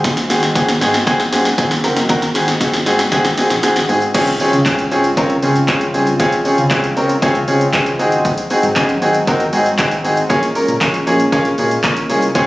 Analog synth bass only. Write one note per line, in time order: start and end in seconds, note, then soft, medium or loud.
0.00 0.18 G#1 loud
0.30 0.50 G#1 loud
0.69 0.78 G#1 loud
0.81 1.01 G#2 loud
1.32 1.52 F#2 medium
1.58 1.78 G#1 medium
1.84 2.04 F#1 loud
2.09 2.29 G#1 loud
2.35 2.55 G#1 loud
2.74 2.83 G#1 loud
2.86 3.06 G#2 loud
3.12 3.32 G#1 loud
3.38 3.43 A#1 soft
3.50 3.60 A#1 medium
3.63 3.69 G#1 medium
3.76 3.86 G#1 medium
3.89 4.09 G#2 loud
4.15 4.34 C#2 loud
4.53 4.63 C#3 loud
4.66 4.85 C#2 loud
4.92 5.11 C#2 medium
5.30 5.40 C#2 loud
5.43 5.63 C#3 loud
5.68 5.88 C#2 medium
5.94 6.14 C2 loud
6.20 6.39 C#2 loud
6.58 6.68 C#3 loud
6.71 6.91 C#2 loud
6.97 7.16 C#2 loud
7.35 7.45 C#2 loud
7.48 7.68 C#3 loud
7.74 8.01 C#2 loud
7.99 8.39 G#1 loud
8.63 8.73 G#2 loud
8.76 8.96 F#2 loud
9.02 9.21 G#1 loud
9.40 9.50 G#1 medium
9.53 9.73 G#2 loud
9.79 9.98 G#1 loud
10.04 10.24 G#1 loud
10.30 10.50 A#1 loud
10.68 10.78 A#2 medium
10.81 11.01 A#1 medium
11.07 11.27 A#1 loud
11.45 11.55 A#1 medium
11.58 11.78 A#2 loud
11.84 12.03 A#1 loud
12.10 12.29 C2 loud
12.35 12.47 C#2 loud